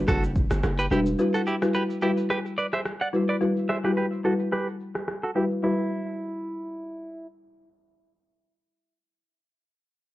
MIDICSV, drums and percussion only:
0, 0, Header, 1, 2, 480
1, 0, Start_track
1, 0, Key_signature, 1, "minor"
1, 0, Tempo, 555556
1, 1026, Time_signature, 4, 2, 24, 8
1, 8766, End_track
2, 0, Start_track
2, 0, Title_t, "Drums"
2, 67, Note_on_c, 9, 36, 90
2, 67, Note_on_c, 9, 37, 82
2, 71, Note_on_c, 9, 82, 64
2, 78, Note_on_c, 9, 60, 51
2, 78, Note_on_c, 9, 61, 73
2, 78, Note_on_c, 9, 64, 68
2, 153, Note_off_c, 9, 36, 0
2, 154, Note_off_c, 9, 37, 0
2, 158, Note_off_c, 9, 82, 0
2, 164, Note_off_c, 9, 60, 0
2, 164, Note_off_c, 9, 61, 0
2, 164, Note_off_c, 9, 64, 0
2, 206, Note_on_c, 9, 82, 54
2, 293, Note_off_c, 9, 82, 0
2, 308, Note_on_c, 9, 36, 92
2, 309, Note_on_c, 9, 82, 51
2, 395, Note_off_c, 9, 36, 0
2, 396, Note_off_c, 9, 82, 0
2, 437, Note_on_c, 9, 82, 93
2, 438, Note_on_c, 9, 37, 84
2, 445, Note_on_c, 9, 61, 62
2, 524, Note_off_c, 9, 82, 0
2, 525, Note_off_c, 9, 37, 0
2, 531, Note_off_c, 9, 61, 0
2, 548, Note_on_c, 9, 37, 92
2, 548, Note_on_c, 9, 82, 69
2, 553, Note_on_c, 9, 60, 80
2, 634, Note_off_c, 9, 37, 0
2, 634, Note_off_c, 9, 82, 0
2, 640, Note_off_c, 9, 60, 0
2, 684, Note_on_c, 9, 82, 55
2, 771, Note_off_c, 9, 82, 0
2, 794, Note_on_c, 9, 60, 58
2, 794, Note_on_c, 9, 82, 47
2, 881, Note_off_c, 9, 60, 0
2, 881, Note_off_c, 9, 82, 0
2, 917, Note_on_c, 9, 82, 74
2, 1004, Note_off_c, 9, 82, 0
2, 1028, Note_on_c, 9, 82, 68
2, 1114, Note_off_c, 9, 82, 0
2, 1160, Note_on_c, 9, 82, 53
2, 1247, Note_off_c, 9, 82, 0
2, 1270, Note_on_c, 9, 82, 50
2, 1357, Note_off_c, 9, 82, 0
2, 1401, Note_on_c, 9, 37, 84
2, 1403, Note_on_c, 9, 82, 78
2, 1487, Note_off_c, 9, 37, 0
2, 1490, Note_off_c, 9, 82, 0
2, 1505, Note_on_c, 9, 82, 67
2, 1591, Note_off_c, 9, 82, 0
2, 1643, Note_on_c, 9, 82, 55
2, 1730, Note_off_c, 9, 82, 0
2, 1743, Note_on_c, 9, 82, 57
2, 1830, Note_off_c, 9, 82, 0
2, 1879, Note_on_c, 9, 82, 80
2, 1966, Note_off_c, 9, 82, 0
2, 1988, Note_on_c, 9, 37, 83
2, 1992, Note_on_c, 9, 82, 66
2, 2074, Note_off_c, 9, 37, 0
2, 2078, Note_off_c, 9, 82, 0
2, 2125, Note_on_c, 9, 82, 52
2, 2211, Note_off_c, 9, 82, 0
2, 2229, Note_on_c, 9, 82, 51
2, 2316, Note_off_c, 9, 82, 0
2, 2359, Note_on_c, 9, 37, 89
2, 2359, Note_on_c, 9, 82, 92
2, 2445, Note_off_c, 9, 82, 0
2, 2446, Note_off_c, 9, 37, 0
2, 2467, Note_on_c, 9, 37, 89
2, 2467, Note_on_c, 9, 82, 66
2, 2553, Note_off_c, 9, 37, 0
2, 2553, Note_off_c, 9, 82, 0
2, 2604, Note_on_c, 9, 82, 51
2, 2690, Note_off_c, 9, 82, 0
2, 2713, Note_on_c, 9, 82, 43
2, 2800, Note_off_c, 9, 82, 0
2, 2838, Note_on_c, 9, 82, 70
2, 2925, Note_off_c, 9, 82, 0
2, 2950, Note_on_c, 9, 82, 67
2, 3037, Note_off_c, 9, 82, 0
2, 3081, Note_on_c, 9, 82, 51
2, 3168, Note_off_c, 9, 82, 0
2, 3190, Note_on_c, 9, 82, 52
2, 3192, Note_on_c, 9, 37, 87
2, 3276, Note_off_c, 9, 82, 0
2, 3278, Note_off_c, 9, 37, 0
2, 3323, Note_on_c, 9, 37, 83
2, 3325, Note_on_c, 9, 82, 80
2, 3409, Note_off_c, 9, 37, 0
2, 3411, Note_off_c, 9, 82, 0
2, 3426, Note_on_c, 9, 82, 64
2, 3513, Note_off_c, 9, 82, 0
2, 3564, Note_on_c, 9, 82, 55
2, 3651, Note_off_c, 9, 82, 0
2, 3665, Note_on_c, 9, 82, 56
2, 3751, Note_off_c, 9, 82, 0
2, 3799, Note_on_c, 9, 82, 77
2, 3885, Note_off_c, 9, 82, 0
2, 3908, Note_on_c, 9, 37, 80
2, 3912, Note_on_c, 9, 82, 64
2, 3994, Note_off_c, 9, 37, 0
2, 3998, Note_off_c, 9, 82, 0
2, 4045, Note_on_c, 9, 82, 51
2, 4132, Note_off_c, 9, 82, 0
2, 4149, Note_on_c, 9, 82, 51
2, 4236, Note_off_c, 9, 82, 0
2, 4278, Note_on_c, 9, 82, 95
2, 4279, Note_on_c, 9, 37, 83
2, 4364, Note_off_c, 9, 82, 0
2, 4365, Note_off_c, 9, 37, 0
2, 4389, Note_on_c, 9, 37, 82
2, 4389, Note_on_c, 9, 82, 67
2, 4475, Note_off_c, 9, 37, 0
2, 4475, Note_off_c, 9, 82, 0
2, 4524, Note_on_c, 9, 82, 51
2, 4610, Note_off_c, 9, 82, 0
2, 4634, Note_on_c, 9, 82, 45
2, 4720, Note_off_c, 9, 82, 0
2, 4757, Note_on_c, 9, 82, 73
2, 4843, Note_off_c, 9, 82, 0
2, 8766, End_track
0, 0, End_of_file